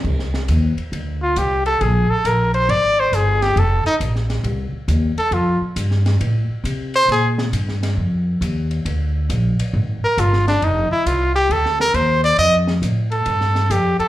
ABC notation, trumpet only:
X:1
M:4/4
L:1/8
Q:"Swing" 1/4=136
K:Fmix
V:1 name="Trumpet"
z4 z F G A | _A =A B c d c _A G | A E z4 z A | F z6 c |
_A z6 z | z4 z B F D | E =E F G A B c d | e z2 A3 G A |]